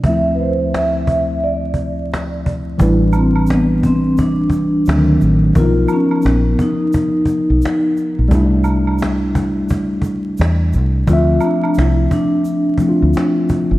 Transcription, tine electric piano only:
X:1
M:4/4
L:1/8
Q:"Swing 16ths" 1/4=87
K:Ddor
V:1 name="Tine electric piano"
[D,,F,A,CE]8 | [E,G,DB]6 [_E,^F,A,CD]2 | [^E,B,^D^A]8 | [G,A,DE]8 |
[F,A,Ce]4- [F,A,Ce] [F,A,CEF]3 |]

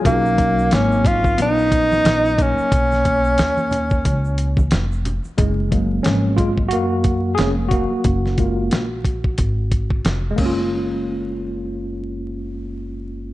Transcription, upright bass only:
X:1
M:4/4
L:1/16
Q:"Swing 16ths" 1/4=90
K:F#
V:1 name="Upright bass" clef=bass
B,,,4 G,,,4 A,,,4 A,,,3 z | B,,,4 D,,4 C,,4 E,,,3 z | F,,,4 G,,,4 F,,4 E,,,3 z | F,,,4 A,,,4 G,,,4 E,,,2 F,,,2- |
F,,,16 |]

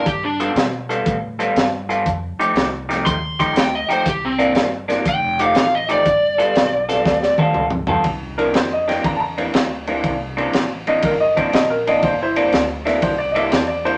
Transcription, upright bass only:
X:1
M:4/4
L:1/8
Q:"Swing" 1/4=120
K:Cmix
V:1 name="Upright bass" clef=bass
G,,2 =B,,2 A,,2 G,,2 | F,, z C,,2 _E,,2 D,, z | C,,2 G,,,2 F,,,2 A,,,2 | G,,,2 =B,,,2 D,,2 _D,,2 |
C,,2 F,,2 E,,2 D,,2 | C,,2 A,,,2 G,,,2 B,,,2 | G,,,2 D,,2 C,,2 E,,2 |]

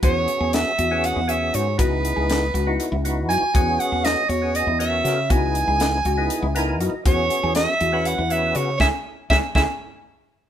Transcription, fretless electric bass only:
X:1
M:7/8
L:1/16
Q:1/4=120
K:C#dor
V:1 name="Fretless electric bass" clef=bass
E,,2 z E,,2 z E,,3 E,,3 G,,2 | C,,3 C,,3 C,,2 z C,,3 F,, z | E,,2 z E,,2 z E,,3 E,,3 C,2 | C,,3 C,,3 C,,2 z C,,3 F,, z |
E,,2 z E,,2 z E,,3 E,,3 C,2 | C,, z3 C,, z C,, z6 z |]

